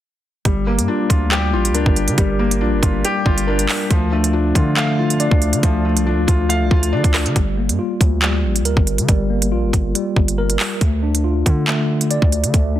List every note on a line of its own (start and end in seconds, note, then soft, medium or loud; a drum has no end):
0.45 0.80 G1 loud
0.45 1.30 G3 loud
0.45 1.53 G3 medium
0.45 kick loud
0.45 closed hi-hat medium
0.67 1.75 A#3 medium
0.67 1.96 A#3 medium
0.78 0.88 G2 loud
0.78 closed hi-hat medium
0.88 1.73 D4 medium
0.88 2.18 F4 medium
1.09 1.55 D2 loud
1.09 1.52 F4 medium
1.09 kick loud
1.09 closed hi-hat medium
1.31 2.17 G3 medium
1.31 2.40 G4 loud
1.31 clap loud
1.53 1.71 A1 loud
1.53 2.61 F4 medium
1.65 closed hi-hat medium
1.70 1.85 D2 loud
1.74 2.59 D4 medium
1.74 3.04 A#4 medium
1.74 closed hi-hat medium
1.86 2.09 G1 loud
1.86 kick loud
1.96 closed hi-hat medium
2.08 2.17 D3 medium
2.08 closed hi-hat medium
2.18 2.63 G1 loud
2.18 3.26 G3 medium
2.18 3.03 G3 loud
2.18 kick loud
2.18 closed hi-hat medium
2.39 3.47 A#3 medium
2.39 3.69 A#3 medium
2.51 closed hi-hat medium
2.61 2.74 A#1 loud
2.61 3.46 D4 medium
2.61 3.91 F4 medium
2.72 2.82 G1 loud
2.83 3.03 G1 loud
2.83 3.24 F4 medium
2.83 kick loud
2.83 closed hi-hat medium
3.04 3.91 G3 medium
3.04 3.91 G4 loud
3.04 closed hi-hat medium
3.26 3.67 G1 loud
3.26 3.91 F4 medium
3.26 kick medium
3.38 closed hi-hat medium
3.47 3.91 D4 medium
3.47 3.91 A#4 loud
3.59 closed hi-hat medium
3.69 clap loud
3.69 open hi-hat medium
3.90 4.53 D2 loud
3.90 4.98 F3 medium
3.90 4.76 A3 medium
3.90 kick loud
3.90 closed hi-hat medium
4.12 5.20 A3 medium
4.12 5.42 D4 medium
4.24 closed hi-hat medium
4.33 5.18 D4 medium
4.33 5.63 F4 medium
4.55 5.28 D3 loud
4.55 4.97 F4 medium
4.55 kick loud
4.55 closed hi-hat medium
4.77 5.62 A3 loud
4.77 5.85 F5 loud
4.77 clap loud
4.99 6.07 F4 medium
5.10 closed hi-hat medium
5.20 6.05 D4 medium
5.20 6.50 D5 medium
5.20 closed hi-hat medium
5.31 5.55 D2 loud
5.31 kick loud
5.42 closed hi-hat medium
5.53 5.63 D3 loud
5.53 closed hi-hat medium
5.63 5.98 D2 loud
5.63 6.71 F3 loud
5.63 6.48 A3 medium
5.63 kick loud
5.63 closed hi-hat medium
5.85 6.93 A3 medium
5.85 7.14 D4 medium
5.96 6.14 C2 loud
5.96 closed hi-hat medium
6.06 6.91 D4 medium
6.06 7.36 F4 medium
6.12 6.27 D2 loud
6.27 6.62 D2 loud
6.27 6.70 F4 medium
6.27 kick loud
6.27 closed hi-hat medium
6.49 7.36 A3 medium
6.49 7.36 F5 loud
6.49 closed hi-hat medium
6.61 6.71 C2 loud
6.71 6.94 D2 loud
6.71 7.36 F4 medium
6.71 kick medium
6.83 closed hi-hat medium
6.93 7.04 D3 loud
6.93 7.36 D4 medium
6.93 7.36 D5 medium
7.04 7.27 D2 loud
7.04 kick loud
7.04 closed hi-hat medium
7.14 cross-stick loud
7.14 clap loud
7.14 closed hi-hat medium
7.14 open hi-hat medium
7.26 7.35 D3 loud
7.26 closed hi-hat medium
7.36 7.70 G1 loud
7.36 8.21 G3 loud
7.36 kick loud
7.36 closed hi-hat medium
7.58 8.87 A#3 medium
7.69 7.79 G2 loud
7.69 closed hi-hat medium
7.79 9.08 F4 medium
8.01 8.45 D2 loud
8.01 kick loud
8.01 closed hi-hat medium
8.22 9.07 G3 medium
8.22 clap loud
8.44 8.62 A1 loud
8.56 closed hi-hat medium
8.60 8.76 D2 loud
8.65 9.95 A#4 medium
8.65 closed hi-hat medium
8.77 9.00 G1 loud
8.77 kick loud
8.87 closed hi-hat medium
8.98 9.08 D3 loud
8.98 closed hi-hat medium
9.09 9.53 G1 loud
9.09 9.94 G3 loud
9.09 kick loud
9.09 closed hi-hat medium
9.30 10.60 A#3 medium
9.42 closed hi-hat medium
9.52 9.65 A#1 loud
9.52 10.81 F4 medium
9.63 9.73 G1 loud
9.73 9.94 G1 loud
9.73 kick loud
9.73 closed hi-hat medium
9.95 10.81 G3 medium
9.95 closed hi-hat medium
10.16 10.58 G1 loud
10.16 kick medium
10.28 closed hi-hat medium
10.38 10.81 A#4 loud
10.50 closed hi-hat medium
10.60 clap loud
10.60 open hi-hat medium
10.81 11.43 D2 loud
10.81 11.66 A3 medium
10.81 kick loud
10.81 closed hi-hat medium
11.03 12.32 D4 medium
11.15 closed hi-hat medium
11.24 12.54 F4 medium
11.46 12.19 D3 loud
11.46 kick loud
11.46 closed hi-hat medium
11.68 12.53 A3 loud
11.68 clap loud
12.01 closed hi-hat medium
12.11 12.80 D5 medium
12.11 closed hi-hat medium
12.22 12.45 D2 loud
12.22 kick loud
12.32 closed hi-hat medium
12.44 12.53 D3 loud
12.44 closed hi-hat medium
12.54 12.80 D2 loud
12.54 12.80 A3 medium
12.54 kick loud
12.54 closed hi-hat medium
12.75 12.80 D4 medium